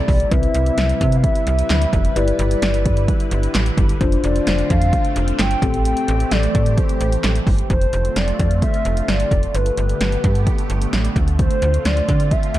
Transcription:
Already playing: analog synth pad C3 G3 A3 E4, soft synth lead D5
0.08 fm bass B1, kick, open hi-hat
0.20 closed hi-hat
0.31 fm bass C2, analog synth pad G3 B4, tine electric piano C4 E4 B4, soft synth lead E5, kick, closed hi-hat
0.43 closed hi-hat
0.54 fm bass C2, closed hi-hat
0.66 closed hi-hat
0.78 fm bass C2, snare, closed hi-hat
0.89 closed hi-hat
1.01 fm bass C3, kick, closed hi-hat
1.12 closed hi-hat
1.17 soft synth lead F5
1.24 soft synth lead E5, kick, closed hi-hat
1.35 closed hi-hat
1.47 fm bass C2, closed hi-hat
1.59 closed hi-hat
1.70 fm bass D2, snare, clap, closed hi-hat
1.82 closed hi-hat
1.93 fm bass F1, kick, closed hi-hat
2.05 closed hi-hat
2.16 fm bass G1, analog synth pad D3, tine electric piano E4 G4 B4, soft synth lead D5, closed hi-hat
2.28 closed hi-hat
2.39 fm bass G1, closed hi-hat
2.51 closed hi-hat
2.62 fm bass G1, snare, closed hi-hat
2.74 closed hi-hat
2.86 fm bass G2, kick, closed hi-hat
2.97 closed hi-hat
3.08 kick, closed hi-hat
3.20 closed hi-hat
3.31 fm bass G1, closed hi-hat
3.43 closed hi-hat
3.55 fm bass A1, snare, clap, closed hi-hat
3.66 closed hi-hat
3.77 fm bass G1, kick, closed hi-hat
3.89 closed hi-hat
4.01 fm bass F1, analog synth pad A3 C4 F4, tine electric piano D4 F4 C5, kick, closed hi-hat
4.12 closed hi-hat
4.24 fm bass F1, soft synth lead D5, closed hi-hat
4.36 closed hi-hat
4.47 fm bass F1, snare, closed hi-hat
4.59 closed hi-hat
4.70 fm bass F2, soft synth lead F5, kick, closed hi-hat
4.82 closed hi-hat
4.93 kick, closed hi-hat
5.05 closed hi-hat
5.16 fm bass F1, closed hi-hat
5.28 closed hi-hat
5.39 fm bass G1, soft synth lead G5, snare, clap, closed hi-hat
5.51 closed hi-hat
5.62 fm bass A1, analog synth pad E3 G4, tine electric piano C4 G4 A4, kick, closed hi-hat
5.74 closed hi-hat
5.85 soft synth lead G5, closed hi-hat
5.97 closed hi-hat
6.08 fm bass A1, closed hi-hat
6.20 closed hi-hat
6.31 fm bass A1, soft synth lead D5, snare, closed hi-hat
6.43 closed hi-hat
6.55 fm bass A2, kick, closed hi-hat
6.66 closed hi-hat
6.77 soft synth lead C5, kick, closed hi-hat
6.89 closed hi-hat
7.01 fm bass A1, closed hi-hat
7.12 closed hi-hat
7.24 fm bass A1, snare, clap, closed hi-hat
7.35 closed hi-hat
7.47 fm bass G1, kick, open hi-hat
7.59 closed hi-hat
7.70 fm bass F1, analog synth pad D3 A3 C4 F4, soft synth lead C5, kick, closed hi-hat
7.81 closed hi-hat
7.93 fm bass F1, closed hi-hat
8.05 closed hi-hat
8.16 fm bass F1, soft synth lead D5, snare, closed hi-hat
8.28 closed hi-hat
8.39 fm bass F2, kick, closed hi-hat
8.51 closed hi-hat
8.62 soft synth lead E5, kick, closed hi-hat
8.74 closed hi-hat
8.85 fm bass F1, closed hi-hat
8.97 closed hi-hat
9.02 soft synth lead E5
9.08 fm bass G1, soft synth lead D5, snare, closed hi-hat
9.20 closed hi-hat
9.31 fm bass F1, kick, closed hi-hat
9.43 closed hi-hat
9.54 fm bass G1, analog synth pad A3 B3 G4, soft synth lead B4, closed hi-hat
9.66 closed hi-hat
9.77 fm bass G1, closed hi-hat
9.89 closed hi-hat
10.01 fm bass G1, snare, closed hi-hat
10.12 closed hi-hat
10.24 fm bass G2, kick, closed hi-hat
10.35 closed hi-hat
10.47 kick, closed hi-hat
10.58 closed hi-hat
10.70 fm bass G1, closed hi-hat
10.82 closed hi-hat
10.93 fm bass A1, snare, closed hi-hat
11.05 closed hi-hat
11.16 fm bass D2, analog synth pad C4 F4, kick, closed hi-hat
11.28 closed hi-hat
11.39 soft synth lead C5, kick, closed hi-hat
11.51 closed hi-hat
11.62 fm bass D2, closed hi-hat
11.74 closed hi-hat
11.85 fm bass D2, soft synth lead D5, snare, closed hi-hat
11.97 closed hi-hat
12.09 fm bass D3, kick, closed hi-hat
12.20 closed hi-hat
12.31 soft synth lead E5, kick, closed hi-hat
12.43 closed hi-hat
12.54 fm bass D2, closed hi-hat

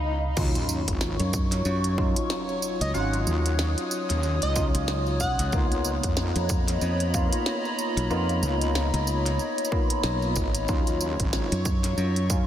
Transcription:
Already playing: wobble bass C#2, tine electric piano A#3 B3 D#4 F4, ambient pad D#5 F5 A#5 B5, swell
0.37 wobble bass D#2, tine electric piano F#3 C#4 D#4 F4, ambient pad F#3 C#5 C#6, kick, crash, tambourine, sub drop
0.55 closed hi-hat, tambourine
0.69 tambourine
0.88 wobble bass G#1, kick, closed hi-hat, tambourine
1.01 snare, tambourine
1.20 fingered electric bass F#2, closed hi-hat, tambourine
1.33 kick, tambourine
1.52 snare, closed hi-hat, tambourine
1.65 fingered electric bass F#2, tambourine
1.84 closed hi-hat, tambourine
1.98 tine electric piano F#3 C#4 D#4 F4, kick
2.16 closed hi-hat, tambourine
2.30 snare, tambourine
2.49 tambourine
2.62 tambourine
2.81 fingered electric bass C#2, digital synth lead D#5, closed hi-hat, tambourine
2.94 fingered electric bass G#1, tine electric piano F#3 C#4 D#4 F4, digital synth lead F#5, ambient pad D#6, tambourine
3.14 closed hi-hat, tambourine
3.27 wobble bass D#2, tambourine
3.46 closed hi-hat, tambourine
3.59 snare, tambourine
3.78 closed hi-hat, tambourine
3.91 tambourine
4.10 wobble bass D#2, snare, closed hi-hat, tambourine
4.23 tambourine
4.42 wobble bass C#2, digital synth lead D#5, closed hi-hat, tambourine
4.56 tine electric piano F#3 C#4 D#4 F4, kick, tambourine
4.75 fingered electric bass C#2, closed hi-hat, tambourine
4.88 snare, tambourine
5.07 tambourine
5.19 fingered electric bass C2, digital synth lead F#5, kick, tambourine
5.39 fingered electric bass C#2, closed hi-hat, tambourine
5.52 wobble bass C#2, tine electric piano A#3 B3 D#4 F4, ambient pad D#5 A#5 B5, kick, tambourine
5.72 closed hi-hat, tambourine
5.84 tambourine
6.04 wobble bass F2, kick, closed hi-hat, tambourine
6.17 snare, tambourine
6.36 fingered electric bass F2, closed hi-hat, tambourine
6.49 kick, tambourine
6.68 snare, closed hi-hat, tambourine
6.81 fingered electric bass F2, tambourine
7.00 closed hi-hat, tambourine
7.14 tine electric piano A#3 B3 D#4 F4, kick, tambourine
7.33 closed hi-hat, tambourine
7.46 snare, tambourine
7.65 tambourine
7.79 tambourine
7.97 fingered electric bass B1, closed hi-hat, tambourine
8.10 fingered electric bass F2, tine electric piano A#3 B3 D#4 F4, tambourine
8.29 closed hi-hat, tambourine
8.43 wobble bass C#2, tambourine
8.62 closed hi-hat, tambourine
8.75 snare, tambourine
8.94 fingered electric bass C#2, closed hi-hat, tambourine
9.07 tambourine
9.26 snare, closed hi-hat, tambourine
9.39 tambourine
9.58 closed hi-hat, tambourine
9.65 tambourine
9.72 tine electric piano A#3 B3 D#4 F4, kick
9.90 closed hi-hat
10.03 fingered electric bass B1, snare, tambourine
10.22 tambourine
10.36 wobble bass G#1, kick, tambourine
10.55 closed hi-hat, tambourine
10.68 wobble bass D#2, tine electric piano F#3 C#4 D#4 F4, ambient pad F#3 C#6, kick, tambourine
10.87 closed hi-hat, tambourine
11.01 tambourine
11.20 wobble bass G#1, kick, closed hi-hat, tambourine
11.33 snare, tambourine
11.52 fingered electric bass F#2, closed hi-hat, tambourine
11.65 kick, tambourine
11.84 snare, closed hi-hat, tambourine
11.97 fingered electric bass F#2, tambourine
12.16 closed hi-hat, tambourine
12.30 tine electric piano F#3 C#4 D#4 F4, kick, tambourine

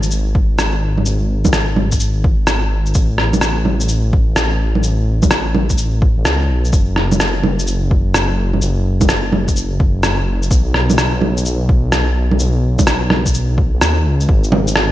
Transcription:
Already playing: detuned saw bass G#1
0.03 shaker
0.11 shaker
0.35 kick
0.59 cross-stick, shaker
0.98 low bongo
1.06 detuned saw bass G#1, shaker
1.45 kick, low bongo, shaker
1.53 cross-stick, shaker
1.76 low bongo
1.92 kick, shaker
2.00 shaker
2.24 kick
2.47 cross-stick, shaker
2.86 shaker
2.94 detuned saw bass A1, kick, shaker
3.18 cross-stick
3.33 low bongo, shaker
3.41 cross-stick, shaker
3.65 low bongo
3.80 shaker
3.88 shaker
4.13 kick
4.36 cross-stick, shaker
4.75 low bongo
4.83 detuned saw bass A1, shaker
5.22 kick, low bongo, shaker
5.31 cross-stick, shaker
5.54 low bongo
5.70 kick, shaker
5.78 shaker
6.02 kick
6.17 detuned saw bass A1
6.25 detuned saw bass C#2, cross-stick, shaker
6.49 detuned saw bass B1
6.65 shaker
6.73 detuned saw bass F#1, kick, shaker
6.96 cross-stick
7.12 low bongo, shaker
7.20 cross-stick, shaker
7.43 low bongo
7.59 shaker
7.67 shaker
7.91 kick
8.14 cross-stick, shaker
8.53 low bongo
8.62 detuned saw bass F#1, shaker
9.01 kick, low bongo, shaker
9.09 cross-stick, shaker
9.32 low bongo
9.48 kick, shaker
9.56 shaker
9.80 kick
10.03 cross-stick, shaker
10.42 shaker
10.51 detuned saw bass B1, kick, shaker
10.74 cross-stick
10.90 low bongo, shaker
10.98 cross-stick, shaker
11.21 low bongo
11.37 shaker
11.45 shaker
11.69 kick
11.92 cross-stick, shaker
12.31 low bongo
12.39 detuned saw bass B1, shaker
12.79 kick, low bongo, shaker
12.87 cross-stick, shaker
13.10 cross-stick, low bongo
13.26 kick, shaker
13.34 shaker
13.58 kick
13.74 detuned saw bass B1
13.81 detuned saw bass D#2, cross-stick, shaker
14.06 detuned saw bass C#2
14.20 shaker
14.29 detuned saw bass G#1, kick
14.44 shaker
14.52 low bongo
14.67 shaker
14.76 cross-stick

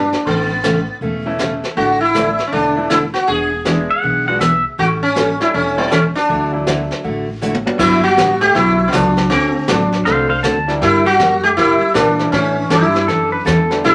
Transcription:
Already playing: upright bass G2, sitar D4
0.13 snare
0.26 upright bass A1, steel-string acoustic guitar C#3 E3 A3 C#4 A4, sitar B3, brush sweep
0.64 steel-string acoustic guitar C#3 E3 A3 C#4 A4, snare, hi-hat pedal
1.01 upright bass E1, steel-string acoustic guitar C#3 E3 A3 C#4 A4, brush sweep
1.26 upright piano E3 A3 C#4 E4
1.38 steel-string acoustic guitar C#3 E3 A3 C#4 A4, snare, hi-hat pedal
1.64 snare
1.77 upright bass A1, steel-string acoustic guitar D3 A3 D4 E4 A4, sitar F#4, brush sweep
2.01 sitar E4
2.14 steel-string acoustic guitar D3 A3 D4 E4 A4, upright piano E3 A3 D4 E4, snare, hi-hat pedal
2.39 snare
2.47 sitar C#4
2.52 upright bass E1, steel-string acoustic guitar D3 A3 D4 E4 A4, sitar D4, brush sweep
2.76 upright piano E3 A3 D4 E4
2.90 steel-string acoustic guitar D3 A3 D4 E4 A4, sitar E4, snare, hi-hat pedal
3.14 sitar F#4, snare
3.27 upright bass E1, steel-string acoustic guitar E3 B3 D4 G#4, sitar G#4, brush sweep
3.65 steel-string acoustic guitar E3 B3 D4 G#4, upright piano G#3 B3 D4 E4, snare, hi-hat pedal
3.91 pedal steel guitar F#5
4.02 upright bass B1, steel-string acoustic guitar E3 B3 D4 G#4, brush sweep
4.28 upright piano G#3 B3 D4 F#4, pedal steel guitar F#5
4.40 steel-string acoustic guitar E3 B3 D4 G#4, pedal steel guitar E5, snare, hi-hat pedal
4.78 upright bass A1, steel-string acoustic guitar E3 G3 C#4 E4 A4, sitar F#4, brush sweep
5.03 sitar C#4
5.16 steel-string acoustic guitar E3 G3 C#4 E4 A4, snare, hi-hat pedal
5.40 upright piano G3 A3 C#4 E4, sitar E4, snare
5.53 upright bass E1, steel-string acoustic guitar E3 G3 C#4 E4 A4, sitar C#4, brush sweep
5.77 upright piano G3 A3 C#4 E4, sitar B3
5.91 steel-string acoustic guitar E3 G3 C#4 E4 A4, sitar C#4, snare, hi-hat pedal
6.16 sitar D4, snare
6.29 upright bass D2, steel-string acoustic guitar D3 F#3 A3 E4 F#4, brush sweep
6.52 upright piano F#3 A3 D4 E4
6.66 steel-string acoustic guitar D3 F#3 A3 E4 F#4, snare, hi-hat pedal
6.91 snare
7.04 upright bass A1, steel-string acoustic guitar D3 F#3 A3 E4 F#4, brush sweep
7.41 steel-string acoustic guitar D3 F#3 A3 E4 F#4, hi-hat pedal
7.55 high tom
7.66 upright piano G3 B3 D4 F#4, high tom
7.79 upright bass G1, steel-string acoustic guitar D3 F#3 B3 D4 G4, sitar E4, brush sweep, kick, snare, crash
8.04 hollow-body jazz guitar G3, sitar F#4
8.17 upright bass A1, steel-string acoustic guitar D3 F#3 B3 D4 G4, snare, hi-hat pedal
8.40 hollow-body jazz guitar A3, sitar G4, snare
8.55 upright bass B1, steel-string acoustic guitar D3 F#3 B3 D4 G4, sitar E4, brush sweep, snare
8.88 hollow-body jazz guitar D3, sitar B3
8.92 upright bass C#2, steel-string acoustic guitar D3 F#3 B3 D4 G4, sitar D4, snare, hi-hat pedal
9.17 snare
9.30 upright bass D2, steel-string acoustic guitar D3 A3 C4 F#4 A4, sitar C4, brush sweep, snare
9.68 upright bass A1, steel-string acoustic guitar D3 A3 C4 F#4 A4, hollow-body jazz guitar F#3, sitar D4, snare, hi-hat pedal
9.92 snare
10.05 upright bass C2, steel-string acoustic guitar D3 A3 C4 F#4 A4, pedal steel guitar C5 F5, brush sweep, snare
10.29 pedal steel guitar C5 F5
10.43 upright bass D2, steel-string acoustic guitar D3 A3 C4 F#4 A4, pedal steel guitar A5, snare, hi-hat pedal
10.67 upright piano E3 G3 A#3 D4 E4, snare
10.81 upright bass G2, steel-string acoustic guitar D3 G3 A#3 E4 G4, sitar E4, brush sweep, snare
11.06 hollow-body jazz guitar G3, sitar F#4
11.19 upright bass F#2, steel-string acoustic guitar D3 G3 A#3 E4 G4, snare, hi-hat pedal
11.44 hollow-body jazz guitar A3, sitar G4
11.57 upright bass G2, steel-string acoustic guitar D3 G3 A#3 E4 G4, sitar E4, brush sweep, snare
11.94 upright bass A#2, steel-string acoustic guitar D3 G3 A#3 E4 G4, hollow-body jazz guitar E3, sitar D4, snare, hi-hat pedal
12.19 upright piano E3 G3 A3 C#4 E4, snare
12.32 upright bass A2, steel-string acoustic guitar E3 G3 C#4 E4 A4, sitar C#4, brush sweep, snare
12.70 upright bass G2, steel-string acoustic guitar E3 G3 C#4 E4 A4, sitar E4, snare, hi-hat pedal
12.95 snare
13.07 upright bass F#2, steel-string acoustic guitar E3 G3 C#4 E4 A4, pedal steel guitar A4, brush sweep, snare
13.32 pedal steel guitar B4
13.45 upright bass E2, steel-string acoustic guitar E3 G3 C#4 E4 A4, pedal steel guitar A4, snare, hi-hat pedal
13.70 upright piano D3 G3 A3 B3 D4, snare
13.84 upright bass B1, steel-string acoustic guitar G3 B3 D4 A4, sitar E4, brush sweep, snare

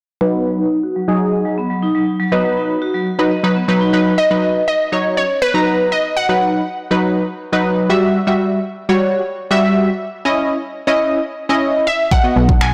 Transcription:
0.21 analog polysynth F#3 D#4 B4, vibraphone F#3
0.34 vibraphone B3
0.46 vibraphone F#3
0.59 vibraphone D#4
0.83 vibraphone F#4
0.96 vibraphone F#3
1.08 analog polysynth F#3 D#4 G#4
1.33 vibraphone D#5
1.45 vibraphone F#3
1.58 vibraphone B3
1.70 vibraphone F#3
1.83 vibraphone D#4
1.95 vibraphone F#3
2.20 vibraphone F#3
2.32 analog polysynth F#3 D#4 B4, vibraphone B3
2.45 vibraphone F#3
2.57 vibraphone D#4
2.82 vibraphone F#4
2.94 vibraphone F#3
3.19 analog polysynth F#3 D#4 B4
3.31 vibraphone D#5
3.43 analog polysynth F#3 D#4 B4, vibraphone F#3
3.56 vibraphone B3
3.68 analog polysynth F#3 D#4 B4, vibraphone F#3
3.81 vibraphone D#4
3.93 analog polysynth F#3 D#4 B4, vibraphone F#3
4.18 synth pluck D#5
4.30 analog polysynth F#3 D#4 B4
4.68 synth pluck D#5
4.92 analog polysynth F#3 D#4 C#5
5.17 synth pluck C#5
5.42 synth pluck B4
5.54 analog polysynth F#3 D#4 A#5
5.92 synth pluck D#5
6.17 synth pluck F#5
6.29 analog polysynth F#3 D#4 B4
6.91 analog polysynth F#3 D#4 B4
7.52 analog polysynth F#3 D#4 B4
7.90 analog polysynth G3 F#4 E5
8.27 analog polysynth G3 F#4 E5
8.89 analog polysynth G3 F#4 C#5
9.51 analog polysynth G3 F#4 E5
10.25 analog polysynth C#4 E4 D#5
10.87 analog polysynth C#4 E4 D#5
11.49 analog polysynth C#4 E4 D#5
11.87 synth pluck E5
12.11 synth pluck F#5, kick
12.24 analog polysynth B3 F#4 D#5
12.36 analog synth bass B1
12.49 kick
12.61 synth pluck G#5, finger snap

